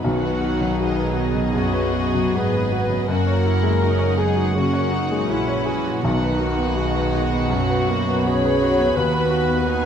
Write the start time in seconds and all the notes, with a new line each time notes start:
0.04 B1 B2 D#3 F#3 D#4 F#4 F#5
0.23 B4
0.41 F#4
0.61 F#3
0.79 F#4 G#4 D#5
0.96 B4
1.13 F#4 D#5
1.34 F#3
1.53 F#2 F#3 C#4 F#4
1.73 B4
1.93 B3 F#4
2.14 F#3
2.34 G#1 G#2 B3 F#4 B4
2.53 B4
2.72 F#4
2.90 F#3
3.08 F#1 F#2 A#3 F#4 A#4 F#5
3.27 C#5
3.46 E4 F#4
3.63 G#3
3.82 C#4 D#4 F#4 F#5
3.99 C#5
4.17 G#3 B3 G#4
4.36 F#4
4.55 C#3 F#3 A#3 C#4 F#4
4.73 C#5
4.91 D#4 F#4
5.11 G#3
5.29 A#1 A#2 E3 C#4 E4 F#4
5.48 C#5
5.65 F#4 G#4
5.87 F#4
6.02 B1 B2 D#3 B3 D#4 F#4 F#5
6.22 B4
6.39 A#3 F#4
6.57 B3
6.76 G#3 F#4
6.95 B4
7.13 F#4
7.32 B3
7.50 F#2 F#3 F#4
7.70 B4
7.88 A#3 F#4
8.09 B3
8.26 G#3 C#4 F#4 G#4 C#5 B5
8.45 B4
8.62 F#3 F#4
8.79 B3
8.96 D#2 B3 F#4 B4
9.12 B4
9.30 F#4
9.48 B3
9.66 B3 D#4 F#4 G#5